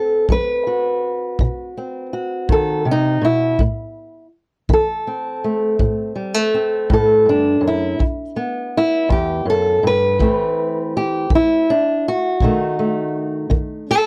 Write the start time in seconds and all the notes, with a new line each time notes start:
Already playing: C4 A4
0.29 F#3 B4, kick
0.67 F#4
1.39 B2, kick
1.77 C4
2.13 F#4
2.49 D#3 A4, kick
2.85 C3
2.91 D#4
3.22 B2 E4
3.59 A2, kick
4.69 E3, kick
4.73 A4
5.07 C4
5.44 A3
5.79 A2, kick
6.16 G3
6.34 A3
6.54 C4
6.90 A2 A4, kick
7.26 G2 D4
7.61 F#2
7.67 E4
7.99 E2, kick
8.36 B3
8.77 E4
9.09 E2 G4, kick
9.45 F#2
9.50 A4
9.83 G2 B4
10.19 A2 E3 A3 C4, kick
10.97 G4
11.30 E3, kick
11.35 E4
11.70 D4
12.08 F#4
12.40 B2 D#3 A3 D#4, kick
12.79 A3
13.50 D#3, kick
13.90 C4 A4